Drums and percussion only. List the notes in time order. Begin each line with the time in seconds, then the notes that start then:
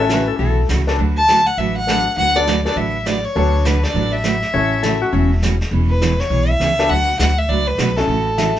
0.09 snare, hi-hat pedal
0.39 brush sweep
0.69 snare, hi-hat pedal
0.87 snare
0.98 brush sweep
1.28 snare, hi-hat pedal
1.58 brush sweep
1.88 snare, hi-hat pedal
2.18 brush sweep
2.47 snare, hi-hat pedal
2.65 snare
2.77 brush sweep
3.06 snare, hi-hat pedal
3.36 brush sweep
3.65 snare, hi-hat pedal
3.83 snare
3.95 brush sweep
4.24 snare, hi-hat pedal
4.42 snare
4.53 brush sweep
4.83 snare, hi-hat pedal
5.13 brush sweep
5.43 snare, hi-hat pedal
5.61 snare
5.72 brush sweep
6.01 snare, hi-hat pedal
6.20 snare
6.31 brush sweep
6.61 snare, hi-hat pedal
6.78 snare
6.90 brush sweep
7.19 snare, hi-hat pedal
7.49 brush sweep
7.78 snare, hi-hat pedal
7.97 snare
8.08 brush sweep
8.38 snare, hi-hat pedal
8.56 snare